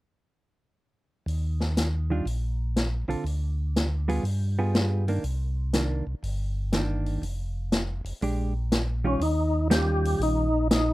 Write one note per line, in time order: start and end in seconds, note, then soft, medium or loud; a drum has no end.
1.26 2.22 D#2 medium
1.26 open hi-hat soft
1.60 snare soft
1.77 snare soft
1.77 closed hi-hat soft
2.10 2.25 D#3 soft
2.10 2.25 G3 soft
2.10 2.25 D4 soft
2.10 2.25 F4 medium
2.26 3.05 A#1 medium
2.26 open hi-hat soft
2.76 snare soft
2.76 closed hi-hat soft
3.08 3.16 A#1 soft
3.08 3.23 D3 soft
3.08 3.24 C4 soft
3.08 3.24 F4 soft
3.08 3.24 A4 soft
3.08 open hi-hat soft
3.24 4.20 D2 medium
3.24 open hi-hat soft
3.76 snare soft
3.76 closed hi-hat soft
4.08 4.23 G3 medium
4.08 4.23 B3 medium
4.08 4.23 F4 medium
4.08 4.24 G#4 medium
4.08 open hi-hat soft
4.23 5.19 G2 medium
4.23 open hi-hat soft
4.59 5.05 G3 medium
4.59 5.05 B3 soft
4.59 5.05 F4 soft
4.59 5.05 G#4 soft
4.75 snare soft
4.75 closed hi-hat soft
5.08 5.22 D#3 soft
5.08 5.23 A#3 soft
5.08 5.23 D4 soft
5.08 open hi-hat soft
5.23 6.03 C2 medium
5.23 open hi-hat soft
5.73 6.04 D#3 soft
5.73 6.04 A#3 soft
5.73 6.04 D4 soft
5.73 snare soft
5.73 closed hi-hat soft
6.07 6.15 C2 soft
6.23 7.18 G1 medium
6.23 open hi-hat soft
6.73 7.23 D#3 soft
6.73 7.23 A#3 soft
6.73 7.23 D4 soft
6.73 snare soft
6.73 closed hi-hat soft
7.06 open hi-hat soft
7.22 8.01 F1 medium
7.22 open hi-hat soft
7.72 snare medium
7.72 closed hi-hat soft
8.05 8.13 F1 soft
8.05 open hi-hat soft
8.21 9.17 A#1 medium
8.21 8.52 G#3 soft
8.21 8.52 D4 soft
8.21 8.53 G4 soft
8.21 open hi-hat soft
8.72 snare medium
8.72 closed hi-hat soft
9.04 9.19 D#3 soft
9.04 9.19 G3 soft
9.04 9.20 C#4 soft
9.04 9.23 C#4 medium
9.04 9.20 F4 medium
9.20 10.16 D#2 medium
9.20 9.68 D#4 medium
9.20 open hi-hat soft
9.70 10.47 D#3 soft
9.70 10.47 G3 medium
9.70 10.47 C#4 soft
9.70 10.47 F4 medium
9.70 10.22 G4 medium
9.70 snare medium
9.70 closed hi-hat soft
10.05 open hi-hat soft
10.19 10.93 A#1 medium
10.19 open hi-hat soft
10.23 10.68 D#4 medium
10.71 10.93 D#4 medium
10.71 snare medium
10.71 closed hi-hat soft